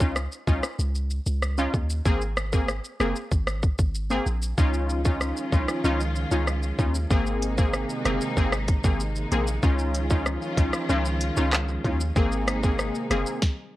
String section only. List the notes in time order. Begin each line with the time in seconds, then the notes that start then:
4.58 D#3 F3 G#3 C#4 F4
7.11 C3 D#3 A#3 D#4
9.63 D#3 F3 C#4 F4
12.16 C3 D#3 G#3 A#3 D#4